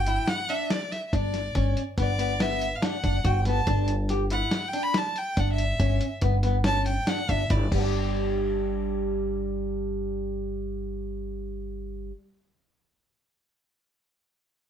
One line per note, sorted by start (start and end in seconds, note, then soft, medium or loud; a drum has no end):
0.00 0.17 G1 loud
0.00 0.30 G5 loud
0.06 0.32 E4 medium
0.06 closed hi-hat medium
0.28 0.51 F#5 loud
0.28 snare medium
0.28 closed hi-hat medium
0.49 0.74 D4 medium
0.49 0.72 E5 medium
0.49 closed hi-hat medium
0.70 0.93 D5 medium
0.70 snare loud
0.70 closed hi-hat medium
0.92 1.07 E5 medium
0.92 snare soft
0.92 closed hi-hat medium
1.07 1.15 E5 medium
1.13 1.50 G1 medium
1.13 1.38 D4 medium
1.13 1.77 D5 medium
1.13 kick loud
1.13 closed hi-hat medium
1.34 snare soft
1.34 closed hi-hat medium
1.55 1.74 G1 loud
1.55 1.80 C#4 medium
1.55 kick loud
1.55 closed hi-hat medium
1.77 closed hi-hat medium
1.98 2.72 G1 medium
1.98 2.10 B3 medium
1.98 2.43 D5 medium
1.98 kick medium
1.98 snare soft
1.98 closed hi-hat medium
2.19 2.31 B3 medium
2.19 closed hi-hat medium
2.40 2.65 B3 medium
2.40 2.77 E5 medium
2.40 snare loud
2.40 closed hi-hat medium
2.61 closed hi-hat medium
2.75 2.86 F5 medium
2.82 2.95 D4 medium
2.82 3.28 F#5 medium
2.82 snare loud
2.82 closed hi-hat medium
3.04 3.22 F#1 medium
3.04 3.16 D4 medium
3.04 kick medium
3.04 closed hi-hat medium
3.24 3.62 G1 loud
3.24 3.37 F#4 medium
3.24 3.47 G5 medium
3.24 kick loud
3.24 closed hi-hat medium
3.45 3.59 B3 medium
3.45 3.87 A5 medium
3.45 snare soft
3.45 closed hi-hat medium
3.67 4.42 G1 loud
3.67 3.92 D4 loud
3.67 kick loud
3.67 closed hi-hat medium
3.88 closed hi-hat medium
4.09 4.23 G4 medium
4.09 snare soft
4.09 closed hi-hat medium
4.30 4.56 E4 medium
4.30 4.70 F#5 medium
4.30 closed hi-hat medium
4.51 snare loud
4.51 closed hi-hat medium
4.68 4.84 G5 loud
4.73 4.98 D4 medium
4.73 closed hi-hat medium
4.83 4.99 B5 loud
4.94 5.19 A5 medium
4.94 snare loud
4.94 closed hi-hat medium
5.16 5.41 G5 loud
5.16 closed hi-hat medium
5.37 5.75 G1 medium
5.37 5.62 D4 medium
5.37 5.52 F#5 medium
5.37 kick loud
5.37 snare soft
5.37 closed hi-hat medium
5.52 6.12 E5 medium
5.58 closed hi-hat medium
5.80 5.98 G1 loud
5.80 6.05 C#4 medium
5.80 kick loud
5.80 closed hi-hat medium
6.01 closed hi-hat medium
6.21 6.97 G1 loud
6.21 6.35 B3 medium
6.21 kick loud
6.21 snare soft
6.21 closed hi-hat medium
6.43 6.56 B3 medium
6.43 snare soft
6.43 closed hi-hat medium
6.64 6.90 C#4 medium
6.64 6.85 A5 loud
6.64 snare loud
6.64 closed hi-hat medium
6.86 7.10 G5 loud
6.86 closed hi-hat medium
7.07 7.20 D4 medium
7.07 7.31 F#5 loud
7.07 snare loud
7.07 closed hi-hat medium
7.29 7.48 G1 medium
7.29 7.41 D4 medium
7.29 7.53 E5 medium
7.29 kick medium
7.29 closed hi-hat medium
7.50 7.69 G1 loud
7.50 7.63 E4 medium
7.50 7.72 D5 medium
7.50 kick loud
7.50 snare soft
7.50 closed hi-hat medium
7.71 12.10 G1 medium
7.71 12.10 G3 medium
7.71 7.79 B3 medium
7.71 kick loud
7.71 crash medium
7.79 12.18 D4 medium
7.83 12.22 G4 medium